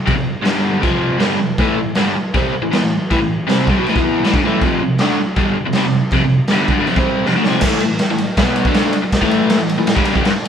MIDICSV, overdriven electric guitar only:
0, 0, Header, 1, 3, 480
1, 0, Start_track
1, 0, Key_signature, 0, "minor"
1, 0, Tempo, 377121
1, 103, Time_signature, 4, 2, 24, 8
1, 13340, End_track
2, 0, Start_track
2, 0, Title_t, "Overdriven electric guitar"
2, 0, Program_c, 0, 29
2, 78, Note_on_c, 0, 41, 96
2, 85, Note_on_c, 0, 48, 107
2, 179, Note_off_c, 0, 41, 0
2, 187, Note_off_c, 0, 48, 0
2, 194, Note_on_c, 0, 41, 62
2, 202, Note_on_c, 0, 48, 71
2, 401, Note_off_c, 0, 41, 0
2, 405, Note_off_c, 0, 48, 0
2, 545, Note_on_c, 0, 43, 98
2, 556, Note_on_c, 0, 55, 98
2, 562, Note_on_c, 0, 50, 98
2, 1016, Note_off_c, 0, 43, 0
2, 1022, Note_on_c, 0, 41, 88
2, 1027, Note_off_c, 0, 50, 0
2, 1032, Note_on_c, 0, 48, 90
2, 1044, Note_off_c, 0, 55, 0
2, 1053, Note_on_c, 0, 53, 106
2, 1498, Note_off_c, 0, 41, 0
2, 1503, Note_on_c, 0, 43, 91
2, 1511, Note_off_c, 0, 48, 0
2, 1515, Note_off_c, 0, 53, 0
2, 1516, Note_on_c, 0, 50, 99
2, 1520, Note_on_c, 0, 55, 112
2, 1758, Note_off_c, 0, 43, 0
2, 1761, Note_off_c, 0, 50, 0
2, 1763, Note_on_c, 0, 41, 64
2, 1766, Note_on_c, 0, 48, 66
2, 1767, Note_off_c, 0, 55, 0
2, 1967, Note_off_c, 0, 41, 0
2, 1969, Note_off_c, 0, 48, 0
2, 2026, Note_on_c, 0, 45, 87
2, 2043, Note_on_c, 0, 52, 103
2, 2048, Note_on_c, 0, 57, 106
2, 2244, Note_off_c, 0, 45, 0
2, 2257, Note_off_c, 0, 52, 0
2, 2259, Note_on_c, 0, 45, 57
2, 2271, Note_off_c, 0, 57, 0
2, 2273, Note_on_c, 0, 52, 66
2, 2456, Note_off_c, 0, 45, 0
2, 2462, Note_off_c, 0, 52, 0
2, 2506, Note_on_c, 0, 43, 90
2, 2517, Note_on_c, 0, 50, 99
2, 2519, Note_on_c, 0, 55, 103
2, 2740, Note_off_c, 0, 43, 0
2, 2746, Note_off_c, 0, 50, 0
2, 2747, Note_off_c, 0, 55, 0
2, 2981, Note_on_c, 0, 48, 92
2, 2997, Note_on_c, 0, 55, 108
2, 3001, Note_on_c, 0, 60, 91
2, 3218, Note_off_c, 0, 48, 0
2, 3226, Note_off_c, 0, 55, 0
2, 3228, Note_off_c, 0, 60, 0
2, 3339, Note_on_c, 0, 52, 72
2, 3340, Note_on_c, 0, 45, 68
2, 3440, Note_off_c, 0, 52, 0
2, 3450, Note_off_c, 0, 45, 0
2, 3455, Note_on_c, 0, 52, 90
2, 3474, Note_on_c, 0, 59, 98
2, 3575, Note_off_c, 0, 52, 0
2, 3585, Note_off_c, 0, 59, 0
2, 3594, Note_on_c, 0, 45, 54
2, 3596, Note_on_c, 0, 52, 66
2, 3784, Note_off_c, 0, 45, 0
2, 3785, Note_off_c, 0, 52, 0
2, 3956, Note_on_c, 0, 45, 97
2, 3967, Note_on_c, 0, 52, 115
2, 4056, Note_off_c, 0, 45, 0
2, 4067, Note_off_c, 0, 52, 0
2, 4071, Note_on_c, 0, 45, 64
2, 4083, Note_on_c, 0, 52, 75
2, 4263, Note_off_c, 0, 45, 0
2, 4269, Note_off_c, 0, 52, 0
2, 4420, Note_on_c, 0, 48, 101
2, 4434, Note_on_c, 0, 60, 103
2, 4436, Note_on_c, 0, 55, 104
2, 4658, Note_off_c, 0, 48, 0
2, 4665, Note_off_c, 0, 60, 0
2, 4667, Note_off_c, 0, 55, 0
2, 4705, Note_on_c, 0, 48, 100
2, 4711, Note_on_c, 0, 55, 117
2, 4801, Note_off_c, 0, 48, 0
2, 4804, Note_off_c, 0, 55, 0
2, 4815, Note_on_c, 0, 47, 91
2, 4829, Note_on_c, 0, 54, 95
2, 4916, Note_off_c, 0, 47, 0
2, 4923, Note_off_c, 0, 54, 0
2, 4949, Note_on_c, 0, 45, 90
2, 4958, Note_on_c, 0, 52, 118
2, 5034, Note_off_c, 0, 52, 0
2, 5043, Note_off_c, 0, 45, 0
2, 5050, Note_on_c, 0, 52, 85
2, 5069, Note_on_c, 0, 59, 100
2, 5077, Note_on_c, 0, 64, 107
2, 5385, Note_off_c, 0, 52, 0
2, 5395, Note_off_c, 0, 59, 0
2, 5395, Note_on_c, 0, 45, 96
2, 5400, Note_on_c, 0, 52, 110
2, 5407, Note_off_c, 0, 64, 0
2, 5506, Note_off_c, 0, 45, 0
2, 5509, Note_off_c, 0, 52, 0
2, 5530, Note_on_c, 0, 43, 84
2, 5543, Note_on_c, 0, 50, 97
2, 5634, Note_off_c, 0, 43, 0
2, 5640, Note_off_c, 0, 50, 0
2, 5653, Note_on_c, 0, 45, 96
2, 5675, Note_on_c, 0, 52, 101
2, 5681, Note_on_c, 0, 57, 107
2, 5875, Note_off_c, 0, 45, 0
2, 5884, Note_on_c, 0, 41, 102
2, 5886, Note_off_c, 0, 52, 0
2, 5889, Note_off_c, 0, 57, 0
2, 5894, Note_on_c, 0, 48, 94
2, 5904, Note_on_c, 0, 53, 101
2, 6110, Note_off_c, 0, 41, 0
2, 6115, Note_off_c, 0, 48, 0
2, 6121, Note_off_c, 0, 53, 0
2, 6135, Note_on_c, 0, 41, 60
2, 6144, Note_on_c, 0, 48, 70
2, 6315, Note_off_c, 0, 41, 0
2, 6320, Note_off_c, 0, 48, 0
2, 6374, Note_on_c, 0, 50, 104
2, 6378, Note_on_c, 0, 57, 108
2, 6393, Note_on_c, 0, 62, 102
2, 6595, Note_off_c, 0, 50, 0
2, 6597, Note_off_c, 0, 57, 0
2, 6605, Note_off_c, 0, 62, 0
2, 6830, Note_on_c, 0, 43, 94
2, 6849, Note_on_c, 0, 50, 103
2, 6856, Note_on_c, 0, 55, 101
2, 7063, Note_off_c, 0, 43, 0
2, 7073, Note_off_c, 0, 50, 0
2, 7076, Note_off_c, 0, 55, 0
2, 7202, Note_on_c, 0, 41, 64
2, 7213, Note_on_c, 0, 48, 78
2, 7312, Note_off_c, 0, 48, 0
2, 7316, Note_off_c, 0, 41, 0
2, 7328, Note_on_c, 0, 48, 97
2, 7348, Note_on_c, 0, 55, 102
2, 7432, Note_off_c, 0, 48, 0
2, 7442, Note_off_c, 0, 55, 0
2, 7456, Note_on_c, 0, 48, 68
2, 7458, Note_on_c, 0, 41, 62
2, 7635, Note_off_c, 0, 48, 0
2, 7636, Note_off_c, 0, 41, 0
2, 7800, Note_on_c, 0, 41, 94
2, 7806, Note_on_c, 0, 48, 121
2, 7908, Note_off_c, 0, 41, 0
2, 7911, Note_off_c, 0, 48, 0
2, 7948, Note_on_c, 0, 41, 62
2, 7949, Note_on_c, 0, 48, 68
2, 8121, Note_off_c, 0, 41, 0
2, 8121, Note_off_c, 0, 48, 0
2, 8289, Note_on_c, 0, 43, 102
2, 8296, Note_on_c, 0, 50, 107
2, 8300, Note_on_c, 0, 55, 104
2, 8491, Note_off_c, 0, 43, 0
2, 8506, Note_on_c, 0, 43, 101
2, 8515, Note_off_c, 0, 50, 0
2, 8517, Note_off_c, 0, 55, 0
2, 8533, Note_on_c, 0, 50, 111
2, 8620, Note_off_c, 0, 43, 0
2, 8634, Note_off_c, 0, 50, 0
2, 8657, Note_on_c, 0, 43, 98
2, 8659, Note_on_c, 0, 50, 102
2, 8752, Note_off_c, 0, 43, 0
2, 8757, Note_off_c, 0, 50, 0
2, 8757, Note_on_c, 0, 41, 102
2, 8763, Note_on_c, 0, 48, 101
2, 8860, Note_off_c, 0, 48, 0
2, 8866, Note_off_c, 0, 41, 0
2, 8876, Note_on_c, 0, 48, 94
2, 8896, Note_on_c, 0, 60, 92
2, 8898, Note_on_c, 0, 55, 94
2, 9224, Note_off_c, 0, 48, 0
2, 9234, Note_off_c, 0, 60, 0
2, 9236, Note_off_c, 0, 55, 0
2, 9237, Note_on_c, 0, 41, 89
2, 9249, Note_on_c, 0, 48, 102
2, 9345, Note_off_c, 0, 41, 0
2, 9351, Note_off_c, 0, 48, 0
2, 9366, Note_on_c, 0, 50, 95
2, 9383, Note_on_c, 0, 57, 92
2, 9470, Note_off_c, 0, 50, 0
2, 9478, Note_off_c, 0, 57, 0
2, 9499, Note_on_c, 0, 41, 96
2, 9517, Note_on_c, 0, 48, 110
2, 9520, Note_on_c, 0, 53, 115
2, 9711, Note_off_c, 0, 48, 0
2, 9716, Note_off_c, 0, 41, 0
2, 9716, Note_on_c, 0, 45, 98
2, 9723, Note_off_c, 0, 53, 0
2, 9728, Note_on_c, 0, 52, 106
2, 9742, Note_on_c, 0, 57, 118
2, 9943, Note_off_c, 0, 52, 0
2, 9944, Note_off_c, 0, 45, 0
2, 9957, Note_off_c, 0, 57, 0
2, 9958, Note_on_c, 0, 52, 66
2, 9967, Note_on_c, 0, 45, 59
2, 10144, Note_off_c, 0, 52, 0
2, 10149, Note_off_c, 0, 45, 0
2, 10317, Note_on_c, 0, 45, 76
2, 10318, Note_on_c, 0, 52, 79
2, 10503, Note_off_c, 0, 45, 0
2, 10504, Note_off_c, 0, 52, 0
2, 10664, Note_on_c, 0, 47, 95
2, 10681, Note_on_c, 0, 54, 102
2, 10686, Note_on_c, 0, 59, 98
2, 11017, Note_off_c, 0, 47, 0
2, 11026, Note_off_c, 0, 54, 0
2, 11028, Note_off_c, 0, 59, 0
2, 11033, Note_on_c, 0, 50, 87
2, 11042, Note_on_c, 0, 57, 96
2, 11051, Note_on_c, 0, 62, 102
2, 11381, Note_off_c, 0, 50, 0
2, 11385, Note_off_c, 0, 57, 0
2, 11390, Note_off_c, 0, 62, 0
2, 11732, Note_on_c, 0, 45, 92
2, 11752, Note_on_c, 0, 52, 81
2, 11761, Note_on_c, 0, 57, 92
2, 12193, Note_off_c, 0, 45, 0
2, 12202, Note_off_c, 0, 52, 0
2, 12208, Note_on_c, 0, 45, 68
2, 12217, Note_on_c, 0, 52, 77
2, 12225, Note_off_c, 0, 57, 0
2, 12407, Note_off_c, 0, 45, 0
2, 12412, Note_off_c, 0, 52, 0
2, 12452, Note_on_c, 0, 45, 66
2, 12459, Note_on_c, 0, 52, 78
2, 12551, Note_off_c, 0, 45, 0
2, 12557, Note_off_c, 0, 52, 0
2, 12567, Note_on_c, 0, 45, 64
2, 12572, Note_on_c, 0, 52, 72
2, 12667, Note_on_c, 0, 43, 91
2, 12677, Note_off_c, 0, 45, 0
2, 12678, Note_off_c, 0, 52, 0
2, 12682, Note_on_c, 0, 50, 89
2, 12684, Note_on_c, 0, 55, 97
2, 12884, Note_off_c, 0, 50, 0
2, 12889, Note_on_c, 0, 48, 86
2, 12891, Note_off_c, 0, 55, 0
2, 12906, Note_on_c, 0, 55, 98
2, 12917, Note_off_c, 0, 43, 0
2, 12997, Note_off_c, 0, 48, 0
2, 12997, Note_on_c, 0, 43, 98
2, 13002, Note_on_c, 0, 50, 106
2, 13037, Note_off_c, 0, 55, 0
2, 13123, Note_off_c, 0, 50, 0
2, 13142, Note_off_c, 0, 43, 0
2, 13340, End_track
3, 0, Start_track
3, 0, Title_t, "Muted overdriven electric guitar strokes"
3, 2755, Note_on_c, 9, 29, 61
3, 2883, Note_off_c, 9, 29, 0
3, 3236, Note_on_c, 9, 29, 71
3, 3364, Note_off_c, 9, 29, 0
3, 6632, Note_on_c, 9, 29, 63
3, 6759, Note_off_c, 9, 29, 0
3, 7079, Note_on_c, 9, 29, 67
3, 7206, Note_off_c, 9, 29, 0
3, 11386, Note_on_c, 9, 29, 63
3, 11499, Note_off_c, 9, 29, 0
3, 11499, Note_on_c, 9, 29, 67
3, 11627, Note_off_c, 9, 29, 0
3, 13128, Note_on_c, 9, 29, 61
3, 13255, Note_off_c, 9, 29, 0
3, 13340, End_track
0, 0, End_of_file